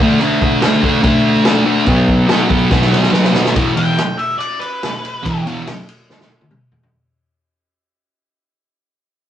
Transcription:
0.00 D3 A3 D4
0.20 D3 A3 D4, crash
0.42 kick
0.61 D3 A3 D4, snare, crash
0.82 D3 A3 D4, kick
1.02 D3 A3 D4, kick, crash
1.45 D3 A3 D4, snare, crash
1.65 D3 A3 D4
1.86 B2 F#3 B3, kick, crash
2.08 kick
2.28 B2 F#3 B3, snare, crash
2.48 B2 F#3 B3, kick
2.70 B2 F#3 B3, kick, snare
2.81 snare
2.92 snare
3.03 snare
3.11 B2 F#3 B3, snare
3.24 snare
3.33 B2 F#3 B3, snare
3.45 snare
3.55 E2 B2 E3, kick, ride
3.76 E2 B2 E3 G5, ride
3.98 snare, ride
4.17 E5, ride
4.38 D5, ride
4.59 B4, ride
4.83 snare, ride
5.05 ride
5.23 E2 B2 E3, kick, ride
5.46 E2 B2 E3, ride
5.67 snare, ride
5.88 ride
6.10 snare
6.20 snare
6.41 high tom
6.51 mid tom
6.72 floor tom
6.83 floor tom

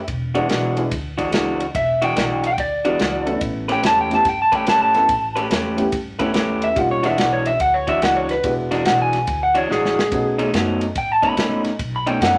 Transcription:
0.08 E1, kick, ride
0.34 E3 G#3 B3 D4 E4 F#4, ride
0.49 B1 E3 G#3 D4 F#4, snare, ride
0.76 G#3 B3 D4 E4 G#4, ride
0.91 D2, kick, ride
1.18 E3 G#3 D4 F#4, kick, ride
1.32 C#2 E3 G#3 B3 D4 E4 F#4 G#4, snare, ride
1.60 ride
1.75 E1 E5, kick, ride
2.02 E3 G#3 D4 F#4 G5, ride
2.16 B1 E3 G#3 D4 F#4, snare, ride
2.44 G5, ride
2.58 D2 D5, kick, ride
2.85 E3 G#3 B3 D4 E4 F#4, ride
2.99 C#2 E3 G#3 D4 F#4, snare, ride
3.26 A3 B3 C#4 E4 A4, ride
3.41 A1, kick, ride
3.68 A3 C#4 G4 B4 G5, snare, ride
3.83 E2 A3 C#4 G4 B4 A5, snare, ride
4.01 G5
4.10 A3 B3 C#4 E4 G4, snare, ride
4.15 A5
4.25 G2 G5, kick, snare, ride
4.42 A5
4.52 A3 C#4 G4 B4 G5, kick, ride
4.66 F#2 A3 C#4 G4 B4 A5, snare, ride
4.82 A5
4.94 A3 B3 C#4 E4 A4, snare, ride
5.09 A1, kick, ride
5.36 A3 C#4 G4 B4, ride
5.50 E2 A3 C#4 G4 B4, snare, ride
5.76 A3 B3 C#4 E4 G4, ride
5.92 G2, kick, ride
6.19 A3 B3 C#4 E4 G4 A4 B4, kick, ride
6.34 D#2 A3 C#4 G4 B4, snare, ride
6.62 E5, ride
6.76 E1 G3 A#3 C#4 D#4 F4 F#5, kick, ride
6.91 C#5
7.03 E3 G#3 B3 D4 E4 F#4 E5, snare, ride
7.18 B1 E3 G#3 D4 F#4 F#5, snare, ride
7.33 C#5
7.45 E5, ride
7.60 D2 F#5, kick, ride
7.74 C#5
7.87 E3 G#3 D4 F#4 E5, kick, ride
8.01 C#2 E3 G#3 D4 F#4 F#5, snare, ride
8.16 C#5
8.29 B4, snare, ride
8.43 E1 G#3 B3 D4 E4 F#4, kick, ride
8.71 E3 G#3 D4 F#4, snare, ride
8.85 B1 E3 G#3 D4 F#4 F#5, snare, ride
9.02 G#5
9.13 snare, ride
9.27 D2, kick, ride
9.43 F#5
9.55 E3 G#3 D4 F#4 C#5, ride
9.69 A1 E3 G#3 D4 F#4 G#4, snare
9.85 snare
9.99 snare
10.11 B1 A3 B3 C#4 D#4 F#4, kick, ride
10.38 B2 A3 C#4 D#4, ride
10.53 F#2 B2 A3 B3 C#4 D#4 F#4, snare, ride
10.81 ride
10.96 A2 G5, kick, ride
11.12 A5
11.22 B2 A3 C#4 D#4 B5, kick, ride
11.37 G#2 B2 A3 C#4 D#4, snare, ride
11.65 snare, ride
11.79 B1, kick, ride
11.96 B5
12.06 B2 A3 C#4 D#4 G5, ride
12.21 F#2 B2 A3 C#4 D#4 F#5, snare, ride

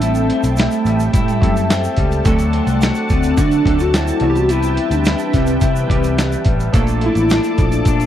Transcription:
Already playing: A1 G3 A3 C4 E4 A4 E5 G5 A5
0.02 A2 C4 E4, closed hi-hat, shaker
0.15 closed hi-hat, shaker
0.30 C4, closed hi-hat
0.43 B1, closed hi-hat, shaker
0.57 A3 E4, snare, closed hi-hat, shaker
0.71 closed hi-hat, shaker
0.85 A1 G3, closed hi-hat, shaker
1.00 closed hi-hat, shaker
1.13 A2 G3 E4, kick, closed hi-hat, shaker
1.21 A3
1.28 G3, closed hi-hat, shaker
1.41 F#2 A3 C4 E4 G4 A4, kick, closed hi-hat
1.57 closed hi-hat, shaker
1.70 C4, snare, closed hi-hat, shaker
1.84 closed hi-hat, shaker
1.97 C#2 G3, kick, closed hi-hat
2.12 closed hi-hat, shaker
2.24 D2 D3 E3 A3 C4 D4 F#4 A4 D5 F#5, kick, closed hi-hat, shaker
2.31 F#3
2.39 closed hi-hat, shaker
2.53 C4, closed hi-hat
2.67 C2, closed hi-hat, shaker
2.81 F#4, snare, closed hi-hat, shaker
2.95 closed hi-hat, shaker
3.09 D2 A3 C4, kick, closed hi-hat, shaker
3.23 closed hi-hat, shaker
3.37 D3 D4 F#4, kick, closed hi-hat, shaker
3.51 closed hi-hat, shaker
3.65 D2 F#3 A3 C4 D4 A4, kick, closed hi-hat
3.79 F#4, closed hi-hat, shaker
3.94 C4 E4, snare, closed hi-hat, shaker
4.08 closed hi-hat, shaker
4.20 C2 C3 E3 G3 B3 C4 F#4 B4 E5 G5, closed hi-hat
4.30 G4
4.36 F#4, closed hi-hat, shaker
4.49 C3 E4, closed hi-hat, shaker
4.62 closed hi-hat, shaker
4.77 closed hi-hat
4.86 E4
4.91 D2 D4, closed hi-hat, shaker
5.05 E4, snare, closed hi-hat, shaker
5.19 closed hi-hat, shaker
5.33 C2 G3 C4, kick, snare, closed hi-hat, shaker
5.47 closed hi-hat, shaker
5.61 C3 E4, kick, closed hi-hat, shaker
5.76 shaker
5.88 C2 E3 G3 C4 G4 B4, kick, closed hi-hat
6.04 closed hi-hat, shaker
6.17 B3, snare, closed hi-hat, shaker
6.32 closed hi-hat, shaker
6.45 A1 G3, kick, closed hi-hat
6.60 closed hi-hat, shaker
6.72 A#1 A#2 F3 A3 A#3 D4 A4 D5 A5 D6, kick, closed hi-hat, shaker
6.87 closed hi-hat, shaker
7.01 A3 E4, closed hi-hat
7.15 A1, closed hi-hat, shaker
7.30 D4, snare, closed hi-hat, shaker
7.44 closed hi-hat, shaker
7.58 A#1 F3 D4, kick, closed hi-hat, shaker
7.72 closed hi-hat, shaker
7.85 A#2 D4, kick, closed hi-hat, shaker
8.00 closed hi-hat, shaker

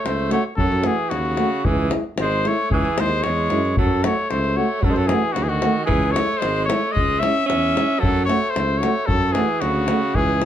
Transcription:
0.05 C#2 A3 C5, davul high
0.19 davul high
0.30 A3 F#4 C#5, davul high
0.56 F#2 F#3 A4, davul low
0.72 davul high
0.83 E3 A3 F#4 G#4, davul high
1.10 D#2 C#3 F#4, davul high
1.25 davul high
1.37 A3 F#4, davul high
1.64 C#2 E3 G#4, davul low
1.90 G#3 E4, davul high
2.16 G#1, davul high
2.21 G#3 C5
2.32 davul high
2.43 G#3 E4, davul high
2.48 A3 C#5
2.71 C#2 E3 G#4, davul low
2.85 davul high
2.98 D#2 G#3 E4 C5, davul high
3.23 E2 G#3 C#5, davul high
3.38 davul high
3.50 F#2 G#3 E4, davul high
3.65 davul high
3.77 F#2 F#3 A4, davul low
4.04 A3 F#4 C#5, davul high
4.30 C#2 A3 C5, davul high
4.44 davul high
4.56 A3 F#4 C#5
4.81 F#2 F#3 A4, davul low
4.90 G#3 C5
4.95 F#3 A4, davul high
5.07 E3 F#4 G#4, davul high
5.12 A3
5.33 C#3 F#4, davul high
5.37 D2
5.43 E3 G#4
5.48 D#3 F#4, davul high
5.62 A3 F#4, davul high
5.85 E3 G#4, davul low
5.91 C#2
6.03 davul high
6.11 A3 C#5
6.16 G#3 E4, davul high
6.38 G#3 C5
6.42 G#1, davul high
6.56 davul high
6.65 A3 C#5
6.70 G#3 E4, davul high
6.92 G#3 D#5
6.96 C#2, davul low
7.10 davul high
7.20 C#4 E4 E5, davul high
7.24 G#3
7.37 davul high
7.46 E2 C#4 E5, davul high
7.64 davul high
7.74 G#3 E4, davul high
7.90 davul high
7.99 F#3 A4, davul low
8.03 F#2
8.17 davul high
8.25 A3 F#4 C#5
8.29 davul high
8.50 C5
8.55 C#2 A3, davul high
8.70 davul high
8.78 F#4 C#5
8.82 A3, davul high
9.06 F#2 F#3 A4, davul low
9.23 davul high
9.32 E3 A3 F#4 G#4, davul high
9.61 D2 C#3 F#4, davul high
9.75 davul high
9.88 A3 F#4, davul high
10.15 C#2 E3 G#4, davul low
10.29 davul high
10.41 E4, davul high

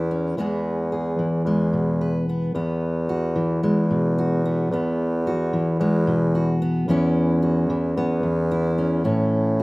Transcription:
Already playing: E2 E3 B3 E4
0.11 C#4
0.37 E2 E3 G#3 B3 G#4
0.92 G#4
1.19 E3
1.45 E2 G#3
1.73 B2
2.01 B4
2.29 B3
2.54 E2 B3
3.09 F#4
3.35 E3
3.62 E2 G#3
3.90 B2
4.18 F#4
4.45 B3
4.70 E2 B3
5.27 F#4
5.53 E3
5.79 E2 G#3
6.07 B2
6.35 F#4
6.62 B3
6.88 E2 E3 B3 C#4 E4
7.42 F#4
7.70 E3
7.96 E2 B3
8.23 E2
8.51 E4
8.78 C#4
9.04 A2 C#4
9.60 F#4

